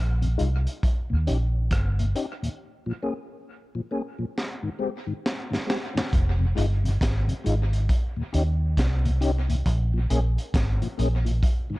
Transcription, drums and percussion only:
0.22 closed hi-hat soft
0.39 closed hi-hat medium
0.67 closed hi-hat medium
0.83 kick loud
0.83 closed hi-hat medium
1.27 closed hi-hat medium
1.71 kick loud
1.71 cross-stick loud
1.71 closed hi-hat medium
1.99 closed hi-hat medium
2.16 closed hi-hat medium
2.44 closed hi-hat medium
4.38 snare medium
5.26 snare medium
5.53 snare medium
5.70 snare loud
5.97 snare loud
6.13 kick loud
6.13 closed hi-hat medium
6.58 closed hi-hat medium
6.85 closed hi-hat medium
7.01 kick loud
7.01 snare loud
7.01 closed hi-hat loud
7.29 closed hi-hat medium
7.46 closed hi-hat medium
7.73 closed hi-hat medium
7.89 kick loud
7.89 closed hi-hat medium
8.34 closed hi-hat medium
8.77 kick medium
8.77 snare loud
8.77 closed hi-hat medium
9.05 closed hi-hat medium
9.22 closed hi-hat medium
9.50 closed hi-hat medium
9.66 kick loud
9.66 closed hi-hat medium
10.10 closed hi-hat medium
10.38 closed hi-hat medium
10.54 kick loud
10.54 snare loud
10.54 closed hi-hat loud
10.82 closed hi-hat medium
10.99 closed hi-hat medium
11.26 closed hi-hat medium
11.43 kick loud
11.43 closed hi-hat medium

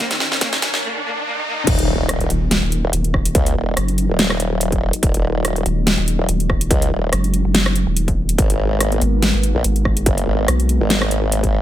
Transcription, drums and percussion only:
0.11 snare medium
0.11 closed hi-hat medium
0.20 snare medium
0.32 snare medium
0.41 kick medium
0.41 snare medium
0.41 closed hi-hat medium
0.53 snare medium
0.53 closed hi-hat soft
0.62 snare medium
0.62 closed hi-hat soft
0.74 snare medium
1.67 kick loud
1.67 closed hi-hat medium
1.67 crash loud
1.79 closed hi-hat medium
2.09 cross-stick medium
2.09 closed hi-hat medium
2.21 closed hi-hat soft
2.30 closed hi-hat medium
2.51 snare loud
2.51 closed hi-hat medium
2.72 closed hi-hat medium
2.93 closed hi-hat medium
3.04 closed hi-hat soft
3.14 kick medium
3.14 cross-stick medium
3.25 closed hi-hat medium
3.35 kick loud
3.35 closed hi-hat medium
3.46 closed hi-hat medium
3.77 cross-stick medium
3.77 closed hi-hat medium
3.88 closed hi-hat soft
3.98 closed hi-hat medium
4.19 snare loud
4.19 closed hi-hat medium
4.30 cross-stick medium
4.40 closed hi-hat medium
4.61 closed hi-hat medium
4.72 kick medium
4.72 closed hi-hat soft
4.93 closed hi-hat medium
5.03 kick loud
5.03 closed hi-hat medium
5.14 closed hi-hat medium
5.45 cross-stick medium
5.45 closed hi-hat medium
5.56 closed hi-hat soft
5.66 closed hi-hat soft
5.87 snare loud
5.87 closed hi-hat medium
6.08 closed hi-hat medium
6.29 closed hi-hat medium
6.40 closed hi-hat soft
6.50 kick medium
6.50 cross-stick soft
6.61 closed hi-hat medium
6.71 kick loud
6.71 closed hi-hat medium
6.82 closed hi-hat medium
7.13 cross-stick medium
7.13 closed hi-hat medium
7.24 closed hi-hat soft
7.34 closed hi-hat soft
7.55 snare loud
7.55 closed hi-hat medium
7.66 cross-stick medium
7.76 closed hi-hat soft
7.97 closed hi-hat medium
8.08 kick medium
8.08 closed hi-hat soft
8.29 closed hi-hat medium
8.38 kick loud
8.38 closed hi-hat medium
8.50 closed hi-hat medium
8.80 cross-stick medium
8.80 closed hi-hat medium
8.92 closed hi-hat soft
9.01 closed hi-hat soft
9.22 snare loud
9.22 closed hi-hat medium
9.43 closed hi-hat soft
9.64 closed hi-hat medium
9.76 closed hi-hat soft
9.85 kick medium
9.85 cross-stick soft
9.97 closed hi-hat medium
10.06 kick loud
10.06 closed hi-hat medium
10.18 closed hi-hat soft
10.48 cross-stick medium
10.48 closed hi-hat medium
10.60 closed hi-hat soft
10.69 closed hi-hat soft
10.90 snare loud
10.90 closed hi-hat medium
11.02 cross-stick medium
11.11 closed hi-hat soft
11.32 closed hi-hat medium
11.44 kick medium
11.44 closed hi-hat soft

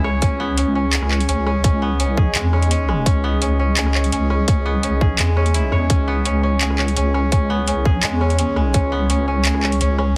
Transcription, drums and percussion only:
0.04 cross-stick medium
0.22 kick loud
0.22 closed hi-hat medium
0.58 closed hi-hat medium
0.93 clap loud
0.93 closed hi-hat medium
1.02 cross-stick medium
1.11 clap medium
1.20 closed hi-hat soft
1.29 closed hi-hat medium
1.46 cross-stick medium
1.64 kick loud
1.64 closed hi-hat medium
2.00 closed hi-hat medium
2.17 kick loud
2.35 clap loud
2.35 closed hi-hat medium
2.53 cross-stick medium
2.62 closed hi-hat soft
2.71 closed hi-hat medium
2.89 cross-stick medium
3.06 kick loud
3.06 closed hi-hat medium
3.42 closed hi-hat medium
3.77 clap loud
3.77 closed hi-hat medium
3.86 cross-stick soft
3.95 clap medium
4.04 closed hi-hat soft
4.12 closed hi-hat medium
4.30 cross-stick medium
4.48 kick loud
4.48 closed hi-hat medium
4.83 closed hi-hat medium
5.01 kick loud
5.19 clap loud
5.19 closed hi-hat medium
5.37 cross-stick soft
5.46 closed hi-hat soft
5.54 closed hi-hat medium
5.72 cross-stick medium
5.90 kick loud
5.90 closed hi-hat medium
6.25 closed hi-hat medium
6.61 clap loud
6.61 closed hi-hat medium
6.70 cross-stick medium
6.79 clap medium
6.88 closed hi-hat soft
6.97 closed hi-hat medium
7.14 cross-stick medium
7.32 kick loud
7.32 closed hi-hat medium
7.68 closed hi-hat medium
7.85 kick loud
8.03 clap loud
8.03 closed hi-hat medium
8.21 cross-stick medium
8.30 closed hi-hat soft
8.39 closed hi-hat medium
8.56 cross-stick medium
8.74 kick loud
8.74 closed hi-hat medium
9.10 closed hi-hat medium
9.45 clap loud
9.45 closed hi-hat medium
9.54 cross-stick medium
9.63 clap medium
9.72 closed hi-hat soft
9.81 closed hi-hat medium
9.98 cross-stick medium

